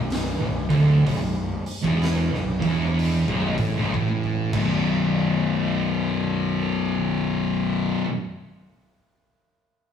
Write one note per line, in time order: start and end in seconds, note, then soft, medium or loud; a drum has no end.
0.00 0.37 B0 medium
0.00 0.29 B1 medium
0.10 snare loud
0.10 open hi-hat medium
0.41 0.68 B0 medium
0.41 0.69 B1 medium
0.70 1.04 D1 medium
0.70 1.05 D2 loud
0.70 kick loud
0.70 open hi-hat medium
1.06 1.62 B0 medium
1.06 1.54 B1 medium
1.06 kick medium
1.06 open hi-hat medium
1.66 open hi-hat medium
1.84 2.29 E1 medium
1.84 2.30 E2 medium
1.84 kick loud
2.02 snare loud
2.02 open hi-hat medium
2.32 2.60 B0 medium
2.32 2.61 B1 medium
2.32 snare soft
2.61 3.24 E1 medium
2.61 3.26 E2 medium
2.61 kick loud
2.61 open hi-hat medium
2.99 open hi-hat medium
3.28 3.56 B0 medium
3.28 3.56 B1 medium
3.28 kick loud
3.58 3.75 A1 medium
3.58 3.75 A2 loud
3.58 kick loud
3.58 open hi-hat medium
3.76 3.93 B0 medium
3.76 3.94 B1 medium
3.94 4.50 A1 medium
3.94 4.53 A2 medium
3.94 kick medium
4.24 kick medium
4.53 7.91 B0 medium
4.53 8.04 B1 medium
4.53 8.06 F#2 medium
4.53 kick loud
4.53 crash medium
4.58 8.08 B2 loud